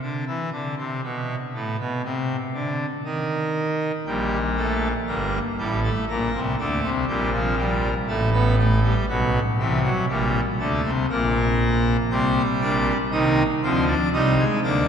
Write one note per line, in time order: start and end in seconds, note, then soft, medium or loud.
0.02 0.25 D3 medium
0.27 0.50 E3 medium
0.52 0.75 D3 medium
0.78 1.01 C3 medium
1.04 1.35 B2 medium
1.54 1.77 A2 medium
1.80 2.02 B2 medium
2.04 2.36 C3 medium
2.54 2.86 D3 medium
3.05 3.92 D#3 medium
4.06 4.93 A#1 medium
4.06 4.93 A#2 medium
4.06 4.38 G3 medium
4.57 4.88 A3 medium
5.07 5.39 G1 medium
5.07 5.39 G2 medium
5.07 5.38 A#3 medium
5.59 5.90 A1 medium
5.59 5.90 A2 medium
5.59 5.80 G3 medium
5.84 6.05 A3 medium
6.09 6.30 A#1 medium
6.09 6.30 A#2 medium
6.09 6.40 A#3 medium
6.34 6.55 C2 medium
6.34 6.55 C3 medium
6.59 6.80 D2 medium
6.59 6.80 D3 medium
6.59 6.90 A3 medium
6.83 7.05 C2 medium
6.83 7.05 C3 medium
7.08 7.94 A#1 medium
7.08 7.94 A#2 medium
7.08 7.30 G3 medium
7.33 7.55 F3 medium
7.58 7.89 G3 medium
8.08 8.94 A1 medium
8.08 8.94 A2 medium
8.08 8.30 A3 medium
8.34 8.55 B3 medium
8.58 8.80 A3 medium
8.84 9.05 G3 medium
9.08 9.39 B1 medium
9.08 9.40 B2 medium
9.08 9.40 F#3 medium
9.59 9.90 C2 medium
9.59 9.90 C3 medium
9.59 9.80 E3 medium
9.84 10.05 F#3 medium
10.09 10.40 A#1 medium
10.09 10.40 A#2 medium
10.09 10.40 G3 medium
10.60 10.81 D2 medium
10.60 10.81 D3 medium
10.60 10.91 A3 medium
10.85 11.06 C2 medium
10.85 11.06 C3 medium
11.10 11.97 A#1 medium
11.10 11.97 A#2 medium
11.10 11.97 A#3 medium
12.11 12.42 C2 medium
12.11 12.42 C3 medium
12.11 12.98 G3 medium
12.11 12.42 C4 medium
12.61 12.92 A#1 medium
12.61 12.92 A#2 medium
12.61 12.92 D4 medium
13.12 13.43 C2 medium
13.12 13.43 C3 medium
13.12 13.43 D#3 medium
13.12 13.43 D#4 medium
13.63 13.94 D2 medium
13.63 13.94 D3 medium
13.63 13.94 F3 medium
13.63 13.84 C4 medium
13.87 14.09 D4 medium
14.13 14.45 C2 medium
14.13 14.44 C3 medium
14.13 14.35 G3 medium
14.13 14.44 D#4 medium
14.39 14.60 G#3 medium
14.64 14.88 D2 medium
14.64 14.88 D3 medium
14.64 14.85 A#3 medium
14.64 14.88 D4 medium